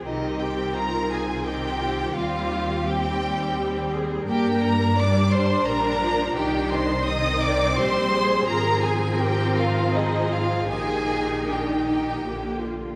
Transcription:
<<
  \new Staff \with { instrumentName = "Violin section" } { \time 3/4 \key c \minor \tempo 4 = 85 ees''8 g''8 bes''8 aes''8 g''4 | f''4 g''4. r8 | \key ees \major g''8 bes''8 d'''8 c'''8 bes''4 | g''8 c'''8 ees'''8 d'''8 c'''4 |
bes''8 aes''8 g''8 f''8 ees''8 f''8 | aes''4 g''4. r8 | }
  \new Staff \with { instrumentName = "Violin section" } { \time 3/4 \key c \minor ees'8 g'8 bes'8 aes'8 g'4 | f'4 g'4. r8 | \key ees \major g'8 bes'8 d''8 c''8 bes'4 | g'8 c''8 ees''8 d''8 c''4 |
bes'8 aes'8 g'8 f'8 ees'8 f'8 | aes'4 g'4. r8 | }
  \new Staff \with { instrumentName = "Cello section" } { \time 3/4 \key c \minor g'4 f'4 ees'8 f'8 | g'2 g'8 aes'8 | \key ees \major bes'4 d'2 | ees'2 g'8 aes'8~ |
aes'4 bes'4 aes'4 | g'4 d'8 ees'8 g'8 f'8 | }
  \new Staff \with { instrumentName = "Viola section" } { \clef bass \time 3/4 \key c \minor << { c'2 c'4 | c'4 c'2 | \key ees \major d'2.~ | d'4 c'2 |
c'2. | ees'2 bes8. r16 | } \\ { ees2 ees4 | g4 g2 | bes4 g4 g8 f8 | ees4 ees4 g4 |
f2. | ees2 d8. r16 | } >> }
  \new Staff \with { instrumentName = "Double bass section" } { \clef bass \time 3/4 \key c \minor c,2. | ees,2. | \key ees \major g,2 bes,,4 | c,2 bes,,4 |
aes,,2. | bes,,2 bes,,8. r16 | }
>>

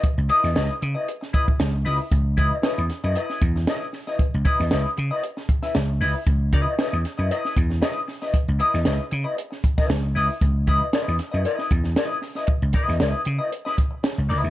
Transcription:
<<
  \new Staff \with { instrumentName = "Clean electric guitar" } { \time 4/4 \key cis \minor \tempo 4 = 116 r8 <e' b' dis''>16 r16 <e' b' dis''>16 r8 <e' b' dis''>16 r8 <e' b' dis''>16 r8. <e' b' dis''>16 r16 | r8 <e' b' dis''>16 r16 <e' b' dis''>16 r8 <e' b' dis''>16 <e' b' dis''>8 r8 <e' b' dis''>16 r8 <e' b' dis''>16 | r8 <e' b' dis''>16 r16 <e' b' dis''>16 r8 <e' b' dis''>16 r8. <e' b' e''>16 r8 <e' b' dis''>16 r16 | r8 <e' b' dis''>8 <e' b' dis''>16 r8 <e' b' dis''>16 <e' b' dis''>8 r8 <e' b' dis''>16 r8 <e' b' dis''>16 |
r8 <e' b' dis''>16 r16 <e' b' dis''>16 r8 <e' b' dis''>16 r8. <e' b' e''>8 r16 <e' b' dis''>16 r16 | r8 <e' b' dis''>16 r16 <e' b' dis''>8 r16 <e' b' dis''>16 <e' b' dis''>8 r8 <e' b' dis''>8 r16 <e' b' dis''>16 | r8 <e' b' dis''>8 <e' b' dis''>8 r16 <e' b' dis''>16 r16 <e' b' dis''>16 r4 <e' b' dis''>8 | }
  \new Staff \with { instrumentName = "Slap bass" } { \clef bass \time 4/4 \key cis \minor r16 cis,16 r16 e,16 cis,16 r16 cis16 r4 r16 cis,8 cis,16 r16 | cis,8 cis,16 r8 e,16 r16 fis,16 r8 e,8 r4 | r16 cis,16 r16 e,16 cis,16 r16 cis16 r4 r16 cis,8 cis,16 r16 | cis,8 cis,16 r8 e,16 r16 fis,16 r8 e,8 r4 |
r16 cis,16 r16 e,16 cis,16 r16 cis16 r4 r16 cis,8 cis,16 r16 | cis,8 cis,16 r8 e,16 r16 fis,16 r8 e,8 r4 | r16 cis,16 r16 e,16 cis,16 r16 cis16 r4. cis,16 cis,16 dis,16 | }
  \new DrumStaff \with { instrumentName = "Drums" } \drummode { \time 4/4 <hh bd>8 hh16 sn16 <hh sn>8 hh8 hh16 sn16 <hh bd>16 bd16 <hh sn>8 hho8 | <hh bd>8 <hh bd>8 <hh sn>8 <hh sn>8 hh16 sn16 <hh bd>16 sn16 <hh sn>8 <hho sn>16 sn16 | <hh bd>8 <hh bd>16 sn16 <hh sn>8 hh8 hh16 sn16 <hh bd>16 sn16 <hh sn>8 hho8 | <hh bd>8 <hh bd>8 <hh sn>8 <hh sn>8 hh16 sn16 <hh bd>16 sn16 <hh sn>8 <hho sn>16 sn16 |
<hh bd>8 hh16 sn16 <hh sn>8 hh8 hh16 sn16 <hh bd>16 <bd sn>16 <hh sn>8 hho8 | <hh bd>8 <hh bd>8 <hh sn>8 <hh sn>8 hh16 sn16 <hh bd>16 sn16 <hh sn>8 <hho sn>16 sn16 | <hh bd>8 <hh bd>16 sn16 <hh sn>8 hh8 hh16 sn16 <hh bd>8 <hh sn>8 hho8 | }
>>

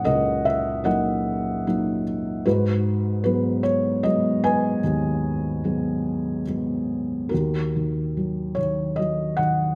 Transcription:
<<
  \new Staff \with { instrumentName = "Felt piano" } { \time 3/4 \key gis \minor \tempo 4 = 74 << { dis''8 e''8 fis''4. r8 | b'4 b'8 cis''8 dis''8 gis''8~ | gis''2 r4 | ais'4. cis''8 dis''8 fis''8 | } \\ { ais'4 <ais' dis''>4. r8 | <dis' fis'>4. r4 <b' dis''>8~ | <b' dis''>2 r4 | fis'4. r4. | } >> }
  \new Staff \with { instrumentName = "Felt piano" } { \clef bass \time 3/4 \key gis \minor cis,4 <fis ais dis'>4 <fis ais dis'>4 | gis,4 <fis gis b>4 <fis gis b>4 | dis,4 <fis gis b>4 <fis gis b>4 | dis,8 dis8 fis8 dis8 fis8 dis8 | }
>>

